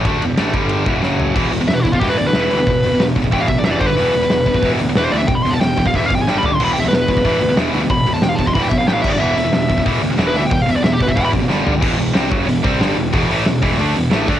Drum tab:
CC |----------------|x---------------|----------------|----------------|
RD |x-x-x-x-x-x-----|----------------|----------------|----------------|
HH |----------------|--o-o-o-o-o-o-o-|o-o-o-o-o-o-o-o-|o-o-o-o-o-o-o-o-|
SD |----o-------o---|----o-------o---|----o-------o---|----o-------o---|
FT |--------------o-|----------------|----------------|----------------|
BD |o-----o---o-----|o-----ooo-------|o-----ooo-o---o-|------ooo-------|

CC |----------------|x---------------|--------------x-|----------------|
RD |----------------|----------------|----------------|----------------|
HH |o-o-o-o-o-o-----|--o-o-o-o-o-o-o-|o-o-o-o-o-o-o---|--o-o-o-o-o-o-o-|
SD |----o-------o---|----o-------o---|----o-------o---|----o-------o---|
FT |--------------o-|----------------|----------------|----------------|
BD |o-----ooo-o-----|------ooo-------|o-----ooo-o---o-|------ooo-------|

CC |----------------|x---------------|----------------|
RD |----------------|----------------|----------------|
HH |o-o-o-o-o-o-----|--o-o-o-o-o-o-o-|o-o-o-o-o-o-o-o-|
SD |----o-------o---|----o-------o---|----o-------o---|
FT |--------------o-|----------------|----------------|
BD |o-----ooo-o-----|o-----o---o-----|o-----o-------o-|